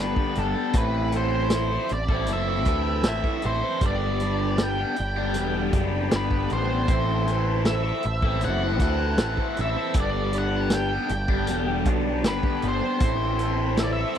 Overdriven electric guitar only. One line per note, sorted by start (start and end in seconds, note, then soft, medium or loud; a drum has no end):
0.00 0.54 G2 medium
0.00 0.55 D3 medium
0.00 0.18 G3 medium
0.00 0.18 B3 loud
0.00 0.16 D4 medium
0.00 0.15 G4 medium
0.17 0.35 G3 soft
0.17 0.37 B3 medium
0.17 0.37 D4 medium
0.17 0.38 G4 medium
0.36 0.56 G3 medium
0.36 0.56 B3 medium
0.36 0.55 D4 medium
0.36 0.53 G4 medium
0.55 0.73 G3 medium
0.55 0.75 B3 medium
0.55 0.72 D4 medium
0.55 0.72 G4 medium
0.74 1.51 A2 medium
0.74 1.12 E3 medium
0.74 1.13 C4 medium
0.74 1.14 E4 medium
0.74 1.16 A4 medium
1.13 1.90 E3 medium
1.13 1.72 C4 medium
1.13 1.71 E4 medium
1.13 1.70 A4 medium
1.70 1.90 C4 medium
1.70 1.90 E4 medium
1.70 1.91 A4 medium
1.91 muted overdriven electric guitar stroke soft
2.10 2.29 C4 medium
2.10 2.29 E4 medium
2.10 2.31 A4 medium
2.28 2.86 A2 medium
2.28 2.64 E3 medium
2.28 2.49 C4 medium
2.28 2.48 E4 medium
2.28 2.47 A4 medium
2.48 2.66 C4 medium
2.48 2.67 E4 medium
2.48 2.68 A4 medium
2.66 3.03 E3 medium
2.66 3.04 C4 medium
2.66 3.05 E4 medium
2.66 3.06 A4 medium
3.04 3.62 A2 medium
3.04 3.41 E3 medium
3.04 3.25 C4 medium
3.04 3.23 E4 medium
3.04 3.23 A4 loud
3.23 3.42 C4 medium
3.23 3.43 E4 medium
3.23 3.44 A4 medium
3.43 3.79 E3 medium
3.43 3.62 C4 medium
3.43 3.62 E4 medium
3.43 3.61 A4 medium
3.61 3.80 C4 medium
3.61 3.80 E4 medium
3.61 3.83 A4 medium
3.81 4.58 G2 medium
3.81 4.58 D3 medium
3.81 4.19 G3 medium
3.81 4.21 B3 medium
3.81 4.21 D4 medium
3.81 4.22 G4 medium
4.20 4.80 G3 medium
4.20 4.80 B3 medium
4.20 4.78 D4 medium
4.20 4.77 G4 medium
4.78 4.96 G3 soft
4.78 4.97 B3 medium
4.78 4.96 D4 medium
4.78 4.97 G4 medium
4.97 muted overdriven electric guitar stroke soft
5.17 5.35 G3 medium
5.17 5.36 B3 medium
5.17 5.36 D4 medium
5.17 5.36 G4 medium
5.35 5.93 G2 medium
5.35 5.93 D3 medium
5.35 5.55 G3 medium
5.35 5.56 B3 medium
5.35 5.54 D4 medium
5.35 5.52 G4 medium
5.54 5.71 G3 medium
5.54 5.73 B3 medium
5.54 5.73 D4 medium
5.54 5.74 G4 medium
5.73 6.11 G3 medium
5.73 6.12 B3 medium
5.73 6.12 D4 medium
5.73 6.13 G4 medium
6.11 6.69 G2 medium
6.11 6.70 D3 medium
6.11 6.33 G3 medium
6.11 6.33 B3 medium
6.11 6.31 D4 medium
6.11 6.30 G4 medium
6.31 6.49 G3 soft
6.31 6.51 B3 medium
6.31 6.50 D4 medium
6.31 6.51 G4 medium
6.50 6.71 G3 medium
6.50 6.71 B3 medium
6.50 6.69 D4 medium
6.50 6.68 G4 medium
6.69 6.88 G3 medium
6.69 6.90 B3 medium
6.69 6.87 D4 medium
6.69 6.86 G4 medium
6.89 7.66 A2 medium
6.89 7.25 E3 medium
6.89 7.26 C4 medium
6.89 7.27 E4 medium
6.89 7.29 A4 medium
7.26 8.03 E3 medium
7.26 7.86 C4 medium
7.26 7.84 E4 medium
7.26 7.84 A4 medium
7.84 8.04 C4 medium
7.84 8.04 E4 medium
7.84 8.04 A4 medium
8.04 muted overdriven electric guitar stroke soft
8.23 8.42 C4 medium
8.23 8.42 E4 medium
8.23 8.43 A4 medium
8.41 8.99 A2 medium
8.41 8.79 E3 medium
8.41 8.64 C4 medium
8.41 8.62 E4 medium
8.41 8.61 A4 medium
8.62 8.81 C4 soft
8.62 8.82 E4 medium
8.62 8.83 A4 medium
8.80 9.18 E3 medium
8.80 9.19 C4 medium
8.80 9.19 E4 medium
8.80 9.21 A4 medium
9.19 9.76 A2 medium
9.19 9.57 E3 medium
9.19 9.40 C4 medium
9.19 9.39 E4 medium
9.19 9.38 A4 loud
9.39 9.57 C4 medium
9.39 9.58 E4 medium
9.39 9.60 A4 medium
9.58 9.94 E3 medium
9.58 9.78 C4 medium
9.58 9.77 E4 medium
9.58 9.76 A4 medium
9.77 9.95 C4 medium
9.77 9.94 E4 medium
9.77 9.98 A4 medium
9.95 10.72 G2 medium
9.95 10.72 D3 medium
9.95 10.32 G3 medium
9.95 10.34 B3 medium
9.95 10.34 D4 medium
9.95 10.34 G4 loud
10.34 10.93 G3 medium
10.34 10.93 B3 medium
10.34 10.91 D4 medium
10.34 10.90 G4 medium
10.91 11.10 G3 medium
10.91 11.11 B3 medium
10.91 11.10 D4 medium
10.91 11.11 G4 medium
11.11 muted overdriven electric guitar stroke soft
11.29 11.49 G3 medium
11.29 11.49 B3 medium
11.29 11.49 D4 medium
11.29 11.50 G4 medium
11.48 12.06 G2 medium
11.48 12.07 D3 medium
11.48 11.69 G3 medium
11.48 11.68 B3 medium
11.48 11.67 D4 medium
11.48 11.66 G4 loud
11.67 11.85 G3 medium
11.67 11.86 B3 medium
11.67 11.87 D4 medium
11.67 11.88 G4 medium
11.87 12.24 G3 medium
11.87 12.24 B3 medium
11.87 12.25 D4 medium
11.87 12.26 G4 medium
12.24 12.82 G2 medium
12.24 12.83 D3 medium
12.24 12.45 G3 medium
12.24 12.44 B3 medium
12.24 12.43 D4 medium
12.24 12.42 G4 medium
12.43 12.61 G3 medium
12.43 12.62 B3 medium
12.43 12.63 D4 medium
12.43 12.64 G4 medium
12.62 12.83 G3 medium
12.62 12.82 B3 medium
12.62 12.81 D4 medium
12.62 12.80 G4 medium
12.81 13.00 G3 medium
12.81 13.00 B3 medium
12.81 13.00 D4 medium
12.81 12.99 G4 medium
13.01 13.78 A2 medium
13.01 13.39 E3 medium
13.01 13.40 C4 medium
13.01 13.40 E4 medium
13.01 13.42 A4 medium
13.40 14.16 E3 medium
13.40 13.99 C4 medium
13.40 13.98 E4 medium
13.40 13.97 A4 medium
13.98 14.17 C4 medium
13.98 14.17 E4 medium
13.98 14.18 A4 medium